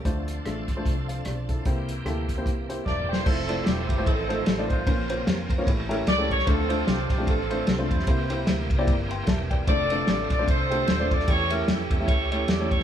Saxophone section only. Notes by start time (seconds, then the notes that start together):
2.86 D5
3.09 C5
3.26 C4 E4 A4
3.64 G4
3.88 G4
4.05 C4 D#4 A4
4.45 A4
4.69 F4 C5
6.08 D5
6.30 C#5
6.47 C4 F4 A4
6.87 G4
7.10 G4
7.28 C4 F4 A4
7.68 A4
7.91 E4 G4 C5
9.68 A4 D5
10.09 D5
10.31 D5
10.49 A4 C5
11.13 D5
11.29 G4 A4 C#5
11.52 A#4
11.69 C#4 A4
12.08 G4 A4 C#5
12.32 C#5
12.49 D5
12.72 C#5